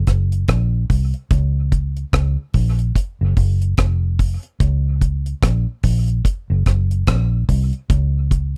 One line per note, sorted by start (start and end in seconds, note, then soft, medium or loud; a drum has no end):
0.07 0.44 F#1 medium
0.07 kick medium
0.07 cross-stick medium
0.07 closed hi-hat medium
0.32 closed hi-hat soft
0.48 0.85 A#1 medium
0.48 kick medium
0.48 cross-stick loud
0.48 closed hi-hat medium
0.90 1.12 C2 medium
0.90 kick medium
0.90 open hi-hat medium
1.14 closed hi-hat soft
1.31 2.03 C#2 medium
1.31 kick loud
1.31 closed hi-hat medium
1.72 kick medium
1.72 closed hi-hat medium
1.97 closed hi-hat soft
2.13 2.36 C#2 loud
2.13 kick loud
2.13 cross-stick loud
2.13 closed hi-hat medium
2.54 2.91 A#1 medium
2.54 kick medium
2.54 open hi-hat medium
2.79 closed hi-hat soft
2.95 kick medium
2.95 closed hi-hat medium
3.21 3.35 F#1 medium
3.37 3.73 F#1 loud
3.37 kick medium
3.37 open hi-hat soft
3.62 closed hi-hat soft
3.77 4.36 F1 medium
3.77 kick medium
3.77 cross-stick loud
3.77 closed hi-hat medium
4.19 kick medium
4.19 open hi-hat medium
4.43 closed hi-hat soft
4.60 5.33 C#2 loud
4.60 kick loud
4.60 closed hi-hat medium
5.01 kick medium
5.01 closed hi-hat medium
5.26 closed hi-hat soft
5.43 5.65 A#1 medium
5.43 kick loud
5.43 cross-stick medium
5.43 closed hi-hat medium
5.83 6.20 A#1 medium
5.83 kick medium
5.83 open hi-hat medium
6.08 closed hi-hat soft
6.25 kick loud
6.25 closed hi-hat medium
6.50 6.64 F#1 medium
6.66 7.03 F#1 medium
6.66 kick medium
6.66 cross-stick medium
6.66 closed hi-hat medium
6.91 closed hi-hat medium
7.07 7.44 A#1 medium
7.07 kick medium
7.07 cross-stick loud
7.07 closed hi-hat medium
7.49 7.71 C2 medium
7.49 kick medium
7.49 open hi-hat medium
7.73 closed hi-hat soft
7.90 8.57 C#2 loud
7.90 kick loud
7.90 closed hi-hat medium
8.31 kick medium
8.31 closed hi-hat medium